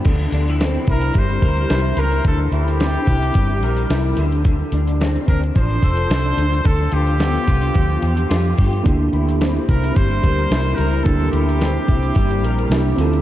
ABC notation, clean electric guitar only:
X:1
M:4/4
L:1/16
Q:"Swing 16ths" 1/4=109
K:Cmix
V:1 name="Clean electric guitar"
D,2 D E C2 E2 G,2 B2 E2 B2 | D,2 E2 C2 E2 G,2 B2 E2 D,2 | z2 D2 C2 D2 F,2 A2 D2 D,2 | D,2 F2 =B,2 F2 F,2 G2 F2 G2 |
D,2 E2 C2 E2 G,2 B2 E2 B2 | D,2 E2 C2 E2 G,2 B2 E2 D,2 |]